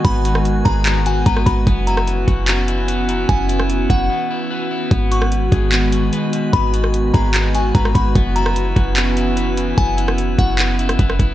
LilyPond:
<<
  \new Staff \with { instrumentName = "Synth bell" } { \time 4/4 \key fis \mixolydian \tempo 4 = 148 b''4. ais''4 gis''8 ais''8 b''8 | r8 ais''2~ ais''8 r4 | gis''4. fis''2~ fis''8 | r8 cis'''2~ cis'''8 r4 |
b''4. ais''4 gis''8 ais''8 b''8 | r8 ais''2~ ais''8 r4 | gis''4. fis''2~ fis''8 | }
  \new Staff \with { instrumentName = "Synth texture" } { \time 4/4 \key fis \mixolydian << { <fis' gis''>1 | <e' fis''>1~ | <e' fis''>1 | <fis' gis''>1~ |
<fis' gis''>1 | <e' fis''>1~ | <e' fis''>1 | } \\ { b'1~ | b'1~ | b'1 | b'1~ |
b'1~ | b'1~ | b'1 | } >> }
  \new Staff \with { instrumentName = "Clean electric guitar" } { \time 4/4 \key fis \mixolydian <b fis' gis' b'>8 fis'4 gis'8 b8 fis'8 b'8 fis'8 | b8 e'4 fis'8 b8 e'8 b'8 e'8 | b8 e'4 fis'8 b8 e'8 b'8 e'8 | b8 fis'4 gis'8 b8 fis'8 b'8 fis'8 |
b8 fis'4 gis'8 b8 fis'8 b'8 fis'8 | b8 e'4 fis'8 b8 e'8 b'8 e'8 | b8 e'4 fis'8 b8 e'8 b'8 e'8 | }
  \new Staff \with { instrumentName = "Ambient pad" } { \time 4/4 \key fis \mixolydian << { fis'1 | fis'1~ | fis'1~ | fis'1~ |
fis'1~ | fis'1~ | fis'1 | } \\ { <dis gis b>1 | <e cis'>1~ | <e cis'>1 | <dis gis>1~ |
<dis gis>1 | <e b cis'>1~ | <e b cis'>1 | } >> }
  \new Staff \with { instrumentName = "808-style bass" } { \clef bass \time 4/4 \key fis \mixolydian gis,,4. gis,,4. gis,,8 gis,,8 | fis,,4. fis,,2~ fis,,8 | fis,,4. fis,,8 r2 | gis,,4. gis,,4. r4 |
gis,,4. gis,,4. gis,,8 gis,,8 | fis,,4. fis,,2~ fis,,8 | fis,,4. fis,,4. fis,,8 fis,,8 | }
  \new DrumStaff \with { instrumentName = "Drums" } \drummode { \time 4/4 <hh bd>8 hh16 ss16 hh8 <hh bd>8 <hc hh>8 hh8 <hh bd>16 ss16 <hh bd>8 | <hh bd>8 hh16 ss16 hh8 <hh bd>8 <hc hh>8 hh8 hh8 hh8 | <hh bd>8 hh16 ss16 hh8 <hh bd>8 r4 r4 | <hh bd>8 hh16 ss16 hh8 <hh bd>8 <hc hh>8 hh8 hh8 hh8 |
<hh bd>8 hh16 ss16 hh8 <hh bd>8 <hc hh>8 hh8 <hh bd>16 ss16 <hh bd>8 | <hh bd>8 hh16 ss16 hh8 <hh bd>8 <hc hh>8 hh8 hh8 hh8 | <hh bd>8 hh16 ss16 hh8 <hh bd>8 <hc hh>8 hh16 <hh ss>16 <hh bd>16 ss16 <hh bd>8 | }
>>